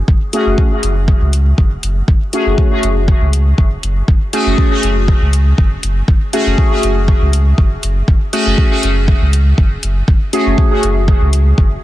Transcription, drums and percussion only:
0.08 kick loud
0.33 closed hi-hat medium
0.58 kick loud
0.83 closed hi-hat medium
1.08 kick loud
1.33 closed hi-hat medium
1.58 kick loud
1.83 closed hi-hat medium
2.08 kick loud
2.33 closed hi-hat medium
2.58 kick loud
2.83 closed hi-hat medium
3.08 kick loud
3.33 closed hi-hat medium
3.58 kick loud
3.83 closed hi-hat medium
4.08 kick loud
4.33 closed hi-hat medium
4.58 kick loud
4.83 closed hi-hat medium
5.08 kick loud
5.33 closed hi-hat medium
5.58 kick loud
5.83 closed hi-hat medium
6.08 kick loud
6.33 closed hi-hat medium
6.58 kick loud
6.83 closed hi-hat medium
7.08 kick loud
7.33 closed hi-hat medium
7.58 kick loud
7.83 closed hi-hat medium
8.08 kick loud
8.33 closed hi-hat medium
8.58 kick loud
8.83 closed hi-hat medium
9.08 kick loud
9.33 closed hi-hat medium
9.58 kick loud
9.83 closed hi-hat medium
10.08 kick loud
10.33 closed hi-hat medium
10.58 kick loud
10.83 closed hi-hat medium
11.08 kick loud
11.33 closed hi-hat medium
11.58 kick loud

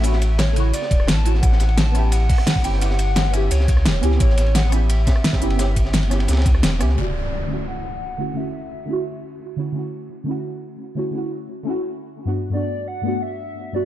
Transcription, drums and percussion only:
0.03 closed hi-hat medium
0.03 ride medium
0.13 snare medium
0.22 closed hi-hat medium
0.22 ride medium
0.39 snare loud
0.39 closed hi-hat medium
0.39 ride medium
0.48 snare soft
0.56 closed hi-hat medium
0.56 ride medium
0.74 closed hi-hat medium
0.74 ride medium
0.82 snare medium
0.91 kick loud
0.91 closed hi-hat medium
0.91 ride medium
1.00 cross-stick soft
1.08 snare loud
1.08 closed hi-hat medium
1.08 ride medium
1.17 ride soft
1.25 closed hi-hat medium
1.25 ride medium
1.35 snare soft
1.43 kick loud
1.43 closed hi-hat loud
1.43 ride medium
1.52 snare medium
1.60 snare medium
1.60 closed hi-hat medium
1.60 ride medium
1.69 ride soft
1.78 snare loud
1.78 closed hi-hat medium
1.78 ride medium
1.86 snare soft
1.95 cross-stick soft
1.95 closed hi-hat medium
1.95 ride medium
2.12 closed hi-hat medium
2.12 ride loud
2.29 kick loud
2.29 closed hi-hat medium
2.29 open hi-hat medium
2.38 cross-stick soft
2.38 snare soft
2.47 snare loud
2.47 closed hi-hat medium
2.47 ride medium
2.56 kick medium
2.64 closed hi-hat medium
2.64 ride medium
2.73 snare soft
2.81 closed hi-hat medium
2.81 ride loud
2.90 snare medium
2.99 closed hi-hat medium
2.99 ride medium
3.16 snare loud
3.16 closed hi-hat medium
3.16 ride loud
3.24 snare medium
3.33 closed hi-hat medium
3.33 ride medium
3.51 closed hi-hat medium
3.51 ride loud
3.60 snare medium
3.68 kick loud
3.68 closed hi-hat medium
3.68 ride medium
3.77 cross-stick soft
3.85 snare loud
3.85 closed hi-hat medium
3.85 ride medium
3.94 ride medium
4.03 closed hi-hat medium
4.03 ride medium
4.11 snare medium
4.20 kick loud
4.20 closed hi-hat medium
4.20 ride medium
4.30 snare medium
4.37 snare medium
4.37 closed hi-hat medium
4.37 ride medium
4.46 ride soft
4.55 snare loud
4.55 closed hi-hat medium
4.55 ride medium
4.65 snare soft
4.72 cross-stick soft
4.72 closed hi-hat medium
4.72 ride medium
4.89 closed hi-hat loud
4.89 ride medium
5.07 kick loud
5.07 snare loud
5.07 closed hi-hat medium
5.07 ride medium
5.16 cross-stick soft
5.24 snare loud
5.24 closed hi-hat loud
5.24 ride medium
5.33 kick medium
5.33 snare loud
5.33 ride medium
5.42 closed hi-hat medium
5.50 ride medium
5.59 snare loud
5.59 closed hi-hat loud
5.59 ride medium
5.76 kick medium
5.76 closed hi-hat medium
5.76 ride medium
5.85 snare soft
5.93 snare soft
5.93 snare loud
5.93 closed hi-hat medium
5.93 ride medium
6.03 ride medium
6.11 cross-stick soft
6.11 snare medium
6.11 closed hi-hat medium
6.19 snare soft
6.19 ride medium
6.28 snare medium
6.28 closed hi-hat loud
6.28 ride medium
6.33 snare medium
6.33 ride medium
6.37 snare loud
6.37 ride medium
6.42 snare medium
6.42 ride medium
6.45 kick loud
6.45 snare soft
6.45 closed hi-hat medium
6.45 ride medium
6.55 cross-stick soft
6.63 snare loud
6.63 closed hi-hat loud
6.63 ride medium
6.72 ride soft
6.80 cross-stick medium
6.80 closed hi-hat medium
6.80 ride medium
6.89 snare soft

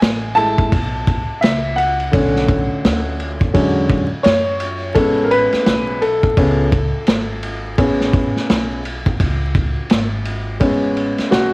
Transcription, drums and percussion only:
0.02 snare loud
0.02 hi-hat pedal soft
0.02 ride medium
0.37 ride medium
0.58 kick medium
0.72 kick medium
0.72 ride medium
1.07 kick medium
1.07 ride medium
1.42 snare loud
1.42 hi-hat pedal soft
1.42 ride medium
1.78 ride medium
2.00 ride soft
2.13 kick loud
2.13 ride medium
2.36 snare soft
2.48 kick loud
2.48 ride medium
2.85 snare loud
2.85 hi-hat pedal soft
2.85 ride medium
3.20 ride medium
3.41 kick medium
3.54 kick medium
3.54 ride medium
3.90 kick medium
3.90 ride soft
4.24 snare loud
4.24 hi-hat pedal soft
4.24 ride medium
4.60 ride medium
4.95 kick loud
4.95 ride medium
5.31 ride medium
5.53 snare soft
5.53 ride soft
5.66 snare loud
5.66 hi-hat pedal medium
5.66 ride medium
6.02 ride medium
6.23 kick medium
6.37 kick medium
6.37 ride medium
6.72 kick loud
6.72 ride soft
7.07 snare loud
7.07 hi-hat pedal medium
7.07 ride medium
7.43 ride medium
7.78 kick loud
7.78 ride medium
8.01 snare soft
8.14 kick loud
8.14 ride medium
8.36 snare soft
8.50 snare loud
8.50 hi-hat pedal medium
8.50 ride medium
8.85 ride medium
9.06 kick loud
9.06 ride soft
9.20 kick medium
9.20 ride medium
9.55 kick medium
9.55 ride soft
9.89 snare loud
9.89 hi-hat pedal medium
9.89 ride medium
10.25 ride medium
10.60 kick loud
10.60 ride medium
10.96 ride soft
11.18 snare soft
11.18 ride soft
11.32 snare loud
11.32 hi-hat pedal soft
11.32 ride medium

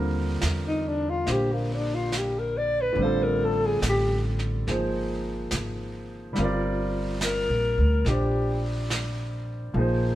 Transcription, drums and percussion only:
0.41 snare soft
0.41 hi-hat pedal medium
1.26 brush sweep soft
1.26 snare soft
2.12 snare soft
2.12 hi-hat pedal soft
2.98 brush sweep soft
3.82 snare soft
3.82 hi-hat pedal medium
4.39 snare soft
4.68 brush sweep soft
4.68 snare soft
5.51 snare soft
5.51 hi-hat pedal medium
6.36 brush sweep soft
6.36 snare soft
7.21 snare medium
7.21 hi-hat pedal medium
8.06 brush sweep soft
8.06 snare soft
8.90 snare soft
8.90 hi-hat pedal medium
9.74 brush sweep soft

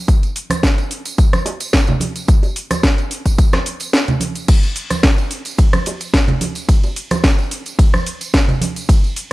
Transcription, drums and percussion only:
0.08 kick loud
0.08 closed hi-hat medium
0.08 tambourine medium
0.08 shaker soft
0.23 closed hi-hat soft
0.23 tambourine soft
0.36 open hi-hat loud
0.36 shaker medium
0.50 cross-stick medium
0.50 closed hi-hat medium
0.50 tambourine medium
0.50 high conga medium
0.50 shaker soft
0.63 kick loud
0.63 snare loud
0.63 closed hi-hat medium
0.63 tambourine medium
0.63 shaker soft
0.78 closed hi-hat soft
0.78 tambourine soft
0.91 open hi-hat loud
0.91 shaker medium
1.05 closed hi-hat medium
1.05 tambourine medium
1.05 shaker soft
1.18 kick loud
1.18 closed hi-hat medium
1.18 tambourine medium
1.18 shaker soft
1.33 cross-stick medium
1.33 closed hi-hat soft
1.33 tambourine soft
1.33 high conga medium
1.46 open hi-hat loud
1.46 high bongo medium
1.46 shaker medium
1.60 closed hi-hat medium
1.60 tambourine medium
1.60 shaker soft
1.73 kick loud
1.73 snare loud
1.73 closed hi-hat medium
1.73 tambourine medium
1.73 shaker soft
1.87 closed hi-hat soft
1.87 tambourine soft
1.87 low conga medium
2.00 open hi-hat loud
2.00 high bongo soft
2.00 high conga medium
2.00 shaker medium
2.16 closed hi-hat medium
2.16 tambourine medium
2.16 shaker soft
2.28 kick loud
2.28 closed hi-hat medium
2.28 tambourine medium
2.28 shaker soft
2.43 closed hi-hat soft
2.43 tambourine soft
2.43 high bongo soft
2.56 open hi-hat loud
2.56 shaker medium
2.71 cross-stick medium
2.71 closed hi-hat medium
2.71 tambourine medium
2.71 high bongo soft
2.71 high conga medium
2.71 shaker soft
2.83 kick loud
2.83 snare loud
2.83 closed hi-hat medium
2.83 tambourine medium
2.83 shaker soft
2.98 closed hi-hat soft
2.98 tambourine soft
3.11 open hi-hat loud
3.11 shaker medium
3.25 kick medium
3.25 closed hi-hat medium
3.25 tambourine medium
3.25 shaker soft
3.38 kick loud
3.38 closed hi-hat medium
3.38 tambourine medium
3.38 shaker soft
3.53 cross-stick medium
3.53 snare soft
3.53 closed hi-hat soft
3.53 tambourine soft
3.53 high conga medium
3.66 open hi-hat loud
3.66 shaker medium
3.80 closed hi-hat medium
3.80 tambourine medium
3.80 shaker soft
3.93 snare loud
3.93 closed hi-hat medium
3.93 tambourine medium
3.93 shaker soft
4.08 closed hi-hat soft
4.08 tambourine soft
4.08 low conga medium
4.20 open hi-hat loud
4.20 high conga medium
4.20 shaker medium
4.35 closed hi-hat medium
4.35 tambourine medium
4.35 shaker soft
4.48 kick loud
4.48 closed hi-hat medium
4.48 crash medium
4.48 ride medium
4.48 tambourine medium
4.48 shaker soft
4.63 closed hi-hat soft
4.63 tambourine soft
4.76 open hi-hat loud
4.76 shaker medium
4.90 cross-stick medium
4.90 closed hi-hat medium
4.90 tambourine medium
4.90 high conga medium
4.90 shaker soft
5.03 kick loud
5.03 snare loud
5.03 closed hi-hat medium
5.03 ride medium
5.03 tambourine medium
5.03 shaker soft
5.18 closed hi-hat soft
5.18 tambourine soft
5.31 open hi-hat loud
5.31 shaker medium
5.45 closed hi-hat medium
5.45 tambourine medium
5.45 shaker soft
5.58 kick loud
5.58 closed hi-hat medium
5.58 ride medium
5.58 tambourine medium
5.58 shaker soft
5.73 cross-stick medium
5.73 closed hi-hat soft
5.73 tambourine soft
5.73 high conga medium
5.86 open hi-hat loud
5.86 high bongo medium
5.86 shaker medium
6.01 closed hi-hat medium
6.01 tambourine medium
6.01 shaker soft
6.14 kick loud
6.14 snare loud
6.14 closed hi-hat medium
6.14 ride medium
6.14 tambourine medium
6.14 shaker soft
6.28 closed hi-hat soft
6.28 tambourine soft
6.28 low conga medium
6.41 open hi-hat loud
6.41 high bongo soft
6.41 high conga medium
6.41 shaker medium
6.55 closed hi-hat medium
6.55 tambourine medium
6.55 shaker soft
6.69 kick loud
6.69 closed hi-hat medium
6.69 ride medium
6.69 tambourine medium
6.69 shaker soft
6.83 closed hi-hat soft
6.83 tambourine soft
6.83 high bongo soft
6.96 open hi-hat loud
6.96 shaker medium
7.11 cross-stick medium
7.11 closed hi-hat medium
7.11 tambourine medium
7.11 high bongo soft
7.11 high conga loud
7.11 shaker soft
7.24 kick loud
7.24 snare loud
7.24 closed hi-hat medium
7.24 ride medium
7.24 tambourine medium
7.24 shaker soft
7.38 closed hi-hat soft
7.38 tambourine soft
7.51 open hi-hat loud
7.51 shaker medium
7.66 closed hi-hat medium
7.66 tambourine medium
7.66 shaker soft
7.79 kick loud
7.79 closed hi-hat medium
7.79 ride medium
7.79 tambourine medium
7.79 shaker soft
7.94 cross-stick medium
7.94 closed hi-hat soft
7.94 tambourine soft
7.94 high conga medium
8.06 open hi-hat loud
8.06 shaker medium
8.21 closed hi-hat medium
8.21 tambourine medium
8.21 shaker soft
8.33 kick loud
8.33 snare loud
8.33 closed hi-hat medium
8.33 ride medium
8.33 tambourine medium
8.33 shaker soft
8.48 closed hi-hat soft
8.48 tambourine soft
8.48 low conga medium
8.61 open hi-hat loud
8.61 high conga loud
8.61 shaker medium
8.76 closed hi-hat medium
8.76 tambourine medium
8.76 shaker soft
8.89 kick loud
8.89 closed hi-hat medium
8.89 ride medium
8.89 tambourine medium
8.89 shaker soft
9.04 closed hi-hat soft
9.04 tambourine soft
9.16 open hi-hat loud
9.16 shaker medium

